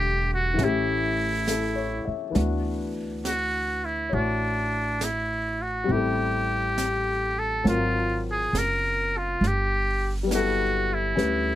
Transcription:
Already playing: upright bass E1, grand piano D3 G3 A3 F#5, muted trumpet G4
0.33 muted trumpet F#4
0.54 grand piano E3 A3
0.59 upright bass A1, grand piano C#4, brush sweep, snare
0.64 muted trumpet E4, grand piano G4
1.48 grand piano A4, snare, hi-hat pedal
1.76 grand piano C#5
2.05 grand piano E5, muted upright bass stroke
2.30 grand piano E3 B3
2.34 upright bass D2, grand piano D4 F#4, brush sweep, snare
3.25 muted trumpet F#4, snare, hi-hat pedal
3.85 muted trumpet E4
4.10 upright bass A1, grand piano E4 F#4 C#5, brush sweep
4.14 muted trumpet D4
5.01 muted trumpet E4, snare, hi-hat pedal
5.62 muted trumpet F#4
5.84 grand piano G3 C4
5.89 upright bass A1, grand piano E4, muted trumpet G4, brush sweep
5.93 grand piano A4
6.78 snare, hi-hat pedal
7.39 muted trumpet A4
7.64 upright bass G#1, grand piano F#3 C4 F4 A#4, brush sweep, snare
7.68 muted trumpet F4
8.31 muted trumpet G#4
8.53 upright bass F#1, snare, hi-hat pedal
8.58 muted trumpet A#4
9.18 muted trumpet F4
9.41 upright bass G1, brush sweep, snare
9.47 muted trumpet G4
10.23 grand piano G3 B3
10.31 grand piano E4, muted trumpet F#4, snare, hi-hat pedal
10.35 grand piano A4
10.94 muted trumpet E4
11.15 upright bass D2, grand piano C#4 G4 B4, brush sweep, snare

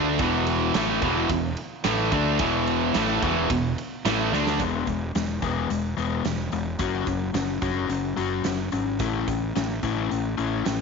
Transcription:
Already playing: fingered electric bass D2, overdriven electric guitar D3 A3 D4
0.19 fingered electric bass E1, overdriven electric guitar E2 B2 E3, kick, ride
0.47 ride
0.74 fingered electric bass A1, overdriven electric guitar A2 E3 A3, snare, ride
1.01 fingered electric bass E1, overdriven electric guitar E2 B2 E3, kick, ride
1.29 fingered electric bass E1, overdriven electric guitar E2 B2, kick, ride
1.57 ride
1.84 fingered electric bass A1, overdriven electric guitar A2 E3 A3, snare, ride
2.12 fingered electric bass D2, overdriven electric guitar D3 A3 D4, kick, ride
2.39 fingered electric bass E1, overdriven electric guitar E2 B2 E3, kick, ride
2.67 ride
2.94 fingered electric bass A1, overdriven electric guitar A2 E3 A3, snare, ride
3.22 fingered electric bass E1, overdriven electric guitar E2 B2 E3, kick, ride
3.50 fingered electric bass E1, overdriven electric guitar E2 B2, kick, ride
3.78 ride
4.05 fingered electric bass A1, overdriven electric guitar A2 E3 A3, snare, ride
4.32 fingered electric bass D2, overdriven electric guitar D3 A3 D4, snare
4.47 snare
4.59 fingered electric bass E1, overdriven electric guitar E3 G#3 B3, kick, closed hi-hat
4.87 fingered electric bass E1, overdriven electric guitar E3 G#3, kick, closed hi-hat
5.15 fingered electric bass E1, overdriven electric guitar E3 G#3, snare, closed hi-hat
5.42 fingered electric bass E1, overdriven electric guitar E3 G#3 B3, kick, closed hi-hat
5.70 fingered electric bass E1, overdriven electric guitar E3 G#3, closed hi-hat
5.97 fingered electric bass E1, overdriven electric guitar E3 G#3 B3, closed hi-hat
6.25 fingered electric bass E1, overdriven electric guitar E3 G#3, snare, closed hi-hat
6.52 fingered electric bass E1, overdriven electric guitar E3 G#3, closed hi-hat
6.79 fingered electric bass F#1, overdriven electric guitar F#3 C#4 F#4, kick, closed hi-hat
7.07 fingered electric bass F#1, overdriven electric guitar F#3 C#4, kick, closed hi-hat
7.34 fingered electric bass F#1, overdriven electric guitar F#3 C#4, snare, closed hi-hat
7.62 fingered electric bass F#1, overdriven electric guitar F#3 C#4 F#4, kick, closed hi-hat
7.89 fingered electric bass F#1, overdriven electric guitar F#3 C#4, closed hi-hat
8.17 fingered electric bass F#1, overdriven electric guitar F#3 C#4 F#4, closed hi-hat
8.44 fingered electric bass F#1, overdriven electric guitar F#3 C#4, snare, closed hi-hat
8.72 fingered electric bass G#1, overdriven electric guitar F#3 C#4, closed hi-hat
8.99 fingered electric bass A1, overdriven electric guitar A3 C#4 E4, kick, closed hi-hat
9.28 fingered electric bass A1, overdriven electric guitar A3 C#4, kick, closed hi-hat
9.56 fingered electric bass A1, overdriven electric guitar A3 C#4, snare, closed hi-hat
9.83 fingered electric bass A1, overdriven electric guitar A3 C#4 E4, kick, closed hi-hat
10.11 fingered electric bass A1, overdriven electric guitar A3 C#4, closed hi-hat
10.38 fingered electric bass A1, overdriven electric guitar A3 C#4 E4, closed hi-hat
10.66 fingered electric bass A1, overdriven electric guitar A3 C#4, snare, closed hi-hat

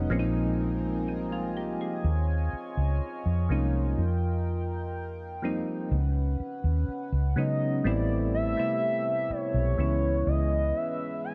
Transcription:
Already playing: synth keys F#3 G#3 B3 C#4 D#4, analog synth pad D#5
0.10 fingered electric bass A#1, synth keys F3 G#3 A#3 C4 C#4, analog synth pad C4 A#4 G#5
0.19 synth keys D#4
1.08 synth keys G3 D#4
1.32 synth keys G#3 F4
1.57 synth keys A#3 G4
1.81 synth keys C4 G#4
2.04 fingered electric bass D#2, analog synth pad F4 C#5
2.53 muted fingered electric bass stroke
2.77 fingered electric bass C#2
3.26 fingered electric bass F2
3.49 fingered electric bass C2, synth keys F3 G#3 A#3 C#4 D#4
3.98 fingered electric bass F2, analog synth pad A#4 G5
5.42 synth keys F3 G3 A#3 C4 D#4
5.91 fingered electric bass C#2, analog synth pad C#4 B4 F#5
6.40 muted fingered electric bass stroke
6.64 fingered electric bass D#2
6.88 muted fingered electric bass stroke
7.12 fingered electric bass C#2
7.36 fingered electric bass C#3, synth keys F#3 G#3 B3 C#4 D#4, soft synth lead D#5
7.84 fingered electric bass A1, synth keys G3 A3 B3 C4 E4, analog synth pad A3 E4 G4 A4, soft synth lead D5
8.35 soft synth lead E5
8.57 synth keys C3 G3 A3 B3 E4
9.30 soft synth lead C#5, muted fingered electric bass stroke
9.54 fingered electric bass B1
9.78 fingered electric bass C#2, synth keys E3 G#3 B3 C#4 E4, analog synth pad G#3 C#4 B4
10.27 fingered electric bass C#2, soft synth lead D#5
10.76 soft synth lead E5
11.24 soft synth lead G#5

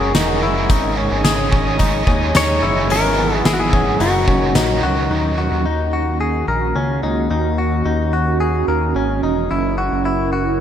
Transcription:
Already playing: analog synth bass F#1, overdriven electric guitar G#3 C#4 F#4 A#4, clean electric guitar C#4, electric slide guitar G#4, ambient pad A#4 F#5 G#5 C#6
0.14 analog synth bass E1, overdriven electric guitar G#3 C#4 F#4, clean electric guitar D#4, snare, closed hi-hat, tambourine
0.18 overdriven electric guitar A#4
0.42 analog synth bass F#1, clean electric guitar E4
0.68 analog synth bass G#1, overdriven electric guitar G#2 C#3 G#3 C#4 D#4 G#4, clean electric guitar D#4, ambient pad C#5 D#5 G#5 D#6, kick, closed hi-hat
0.97 clean electric guitar C#4
1.12 analog synth bass G#1
1.24 clean electric guitar G#4, snare, closed hi-hat, tambourine
1.51 clean electric guitar C#4, overdriven electric guitar C#4 D#4 G#4, kick
1.56 overdriven electric guitar G#3
1.78 overdriven electric guitar G#3 C#4 D#4, clean electric guitar D#4, kick, closed hi-hat
1.83 overdriven electric guitar G#4
2.07 analog synth bass D#2, clean electric guitar C#4, kick
2.34 analog synth bass D#2, overdriven electric guitar G#3 C#4 D#4, clean electric guitar D#4, electric slide guitar C#5, snare, closed hi-hat, tambourine
2.39 overdriven electric guitar G#4
2.63 analog synth bass F#1, clean electric guitar E4
2.88 analog synth bass G#1, overdriven electric guitar G#2 E3 F#3, ambient pad B3 F#5 E6, clean electric guitar C#4, electric slide guitar A#4, closed hi-hat
2.93 overdriven electric guitar B3 E4 G#4
3.18 clean electric guitar B3
3.45 analog synth bass G#1, clean electric guitar E4, electric slide guitar G#4, snare, closed hi-hat, tambourine
3.53 electric slide guitar F#4
3.60 electric slide guitar G#4
3.73 clean electric guitar C#4, celesta F#5, kick
3.99 analog synth bass F#1, overdriven electric guitar F#3 C#4 D#4, clean electric guitar D#4, electric slide guitar F#4, ambient pad C#5 A#5 D#6, closed hi-hat
4.04 overdriven electric guitar A#4
4.28 analog synth bass F#1, clean electric guitar C#4, kick
4.54 analog synth bass A#1, overdriven electric guitar F#3 C#4 D#4, clean electric guitar D#4, snare, closed hi-hat, tambourine
4.59 overdriven electric guitar A#4
4.83 analog synth bass C#2, clean electric guitar F#4
5.10 analog synth bass D#2, ambient pad D#3 A#3 C#4 F#4, clean electric guitar D#4
5.38 clean electric guitar F#4
5.52 analog synth bass D#2
5.66 clean electric guitar D#4
5.93 clean electric guitar F#4
6.21 clean electric guitar G#4
6.48 analog synth bass A#1, clean electric guitar A#4
6.75 analog synth bass C#2, clean electric guitar C#4
7.03 analog synth bass C#2, clean electric guitar D#4
7.31 analog synth bass D#2, clean electric guitar D#4
7.58 clean electric guitar F#4
7.86 analog synth bass D#2, clean electric guitar D#4
8.13 clean electric guitar F#4
8.40 clean electric guitar G#4
8.68 analog synth bass D#2, clean electric guitar A#4
8.95 analog synth bass G#1, clean electric guitar C#4
9.23 analog synth bass E1, clean electric guitar D#4
9.49 analog synth bass F#1, ambient pad F#3 E4 A#4, clean electric guitar E4
9.78 clean electric guitar F#4
9.92 analog synth bass F#1
10.05 clean electric guitar E4
10.33 clean electric guitar F#4

